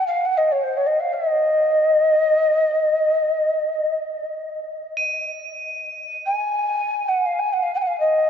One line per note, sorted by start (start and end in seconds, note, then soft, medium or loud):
0.07 0.26 F5 medium
0.25 0.39 F#5 medium
0.37 0.53 D#5 medium
0.52 0.65 C#5 medium
0.63 0.78 C5 medium
0.77 0.88 C#5 medium
0.86 1.01 D#5 medium
1.00 1.15 F5 medium
1.13 3.93 D#5 medium
4.97 8.30 D#7 soft
6.26 7.10 G#5 medium
7.08 7.27 F#5 medium
7.25 7.40 F5 medium
7.39 7.54 G#5 medium
7.53 7.64 F#5 medium
7.62 7.73 F5 medium
7.74 7.78 F#5 medium
7.74 7.83 G#5 medium
7.81 7.88 F#5 medium
7.87 7.99 F5 medium
8.00 8.30 D#5 medium